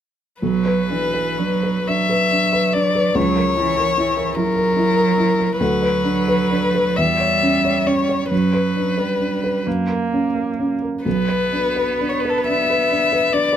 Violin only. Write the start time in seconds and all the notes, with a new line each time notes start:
0.43 B4
1.87 E5
2.74 D5
3.15 C#5
4.35 A#4
5.58 B4
6.97 E5
7.87 C#5
8.32 B4
11.05 B4
12.09 C#5
12.20 B4
12.29 A4
12.38 B4
12.48 E5
13.33 D5